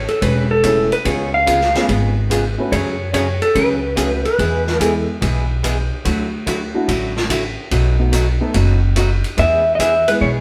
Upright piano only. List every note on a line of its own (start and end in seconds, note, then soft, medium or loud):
0.64 0.89 A3 medium
0.64 0.89 C#4 medium
0.64 0.89 E4 medium
0.64 0.89 A4 medium
1.75 1.87 B3 medium
1.75 1.87 C#4 medium
1.75 1.88 F4 medium
1.75 1.88 G#4 medium
2.58 2.70 A3 medium
2.58 2.71 C#4 medium
2.58 2.71 F#4 medium
2.58 2.71 B4 medium
3.96 4.22 A3 medium
3.96 4.22 C#4 medium
3.96 4.22 F#4 medium
3.96 4.22 G#4 medium
4.80 5.05 G#3 medium
4.80 5.06 B3 medium
4.80 5.06 E4 medium
4.80 5.06 G#4 medium
6.74 6.87 A3 medium
6.74 6.87 D4 medium
6.74 6.87 E4 medium
6.74 6.87 F#4 medium
7.99 8.11 A3 medium
7.99 8.12 B3 medium
7.99 8.12 D#4 medium
7.99 8.12 F#4 medium
8.41 8.53 A3 medium
8.41 8.53 B3 medium
8.41 8.53 D#4 medium
8.41 8.54 A4 medium
10.08 10.20 G#3 medium
10.08 10.20 B3 medium
10.08 10.21 E4 medium
10.08 10.21 G#4 medium